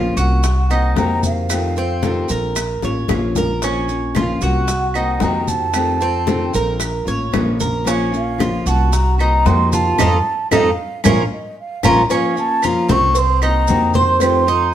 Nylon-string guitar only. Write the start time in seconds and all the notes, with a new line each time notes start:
Already playing: F3 A#3 C#4 F4
0.16 A#3 C#4 F4
0.44 muted nylon-string guitar stroke
0.69 A#3 C4 F#4
0.96 C3 D#3 A#3 C4 F#4
1.50 C3 D#3 A3 C4 F4
1.77 A3 C4 F4
2.03 C3 D#3 A3 C4 F4
2.30 A3 C4 F4
2.56 muted nylon-string guitar stroke
2.83 A#3 C#4 F4
3.09 F3 A#3 C#4 F4
3.62 F3 A#3 C#4 F4
3.89 A#3 C#4 F4
4.16 F3 A#3 C#4 F4
4.42 A#3 C#4 F4
4.68 muted nylon-string guitar stroke
4.94 A#3 C4 F#4
5.21 C3 D#3 A#3 C4 F#4
5.74 C3 D#3 A3 C4 F4
6.00 A3 C4 F4
6.26 C3 D#3 A3 C4 F4
6.53 A3 C4 F4
6.80 muted nylon-string guitar stroke
7.05 A#3 C#4 F4
7.32 F3 A#3 C#4 F4
7.84 F3 A#3 C#4 F4
8.12 A#3 C#4 F4
8.38 F3 A#3 C#4 F4
8.65 A#3 C#4 F4
8.92 muted nylon-string guitar stroke
9.18 A#3 C4 F#4
9.45 C3 D#3 A#3 C4 F#4
9.99 C4 D#4 F4
10.51 C4 D#4 F4
11.05 F3 A#3 C#4
11.84 F3 A#3 C#4
12.09 F3 A#3 C#4 F4
12.36 A#3 C#4 F4
12.63 F3 A#3 C#4 F4
12.89 A#3 C#4 F4
13.15 muted nylon-string guitar stroke
13.41 A#3 C4 F#4
13.67 C3 D#3 A#3 C4 F#4
14.20 C3 D#3 A3 C4 F4
14.47 A3 C4 F4